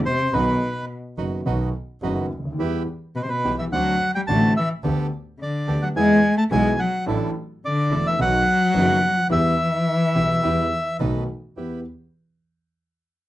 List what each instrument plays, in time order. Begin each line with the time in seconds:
0.06 cello C3, bandoneon C5
0.32 double bass B1, grand piano B1 B2 D#3 F#3 B3 F#4, bandoneon D#4 F#4 B4
0.37 cello B2
1.17 grand piano F#1 F#2 D#3 F#3 B3 F#4, double bass F#1, bandoneon D#4 F#4 B4
1.45 double bass B1, grand piano B1 B2 D#3 F#3 B3 F#4, bandoneon D#4 F#4 B4
2.02 double bass F#1, grand piano F#1 F#2 D#3 F#3 B3 F#4, bandoneon D#4 F#4 B4
2.30 double bass D2
2.39 grand piano C#2
2.45 grand piano D2
2.52 grand piano D#2
2.59 double bass E2, grand piano E2 E3 G3 B3 G4, bandoneon E4 G4 B4
3.15 cello B2, bandoneon B4
3.22 cello C3, bandoneon C5
3.29 cello B2, bandoneon B4
3.44 double bass B1, grand piano B1 B2 E3 G3 B3 G4, bandoneon E4 G4 B4
3.59 cello E3, bandoneon E5
3.72 double bass D2, grand piano D2 D3 A3 C4 F#4, cello F#3, bandoneon D4 F#4 C5 F#5
4.15 cello G3, bandoneon G5
4.27 double bass A1, grand piano A1 A2 D3 A3 C4 F#4, cello A3, bandoneon D4 F#4 C5 A5
4.57 cello E3, bandoneon E5
4.83 double bass D2, grand piano D2 D3 A3 B3 G4, bandoneon B3 G4 A4
5.40 cello D3, bandoneon D5
5.67 double bass D2, grand piano D2 D3 A3 B3 G4, bandoneon B3 G4 A4
5.82 cello F#3, bandoneon F#5
5.95 double bass E2, grand piano E2 E3 G#3 B3 G#4, cello G#3, bandoneon B3 E4 G#4 G#5
6.37 cello A3, bandoneon A5
6.51 double bass B1, grand piano B1 B2 E3 G#3 B3 G#4, cello G#3, bandoneon B3 E4 G#4 G#5
6.79 cello F#3, bandoneon F#5
7.06 double bass A1, grand piano A1 A2 E3 A3 D4 A4, bandoneon D4 E4 A4
7.65 cello D3, bandoneon D5
7.90 double bass E1, grand piano E1 E2 E3 A3 D4 A4, bandoneon D4 E4 A4
8.07 cello E3, bandoneon E5
8.18 double bass B1, grand piano B1 B2 D#3 F#3 B3 F#4, cello F#3, bandoneon D#4 F#4 B4 F#5
8.74 grand piano F#1 F#2 D#3 F#3 B3 F#4, double bass F#1, bandoneon D#4 F#4 B4
9.30 double bass E2, grand piano E2 E3 G3 B3 G4, cello E3, bandoneon E4 G4 B4 E5
10.14 double bass B1, grand piano B1 B2 E3 G3 B3 G4, bandoneon E4 G4 B4
10.42 double bass E2, grand piano E2 E3 G3 B3 G4, bandoneon E4 G4 B4
10.99 double bass B1, grand piano B1 B2 D#3 A3 B3 F#4, bandoneon D#4 A4 B4
11.57 double bass E2, grand piano E2 B3 E4 G4, bandoneon E4 G4 B4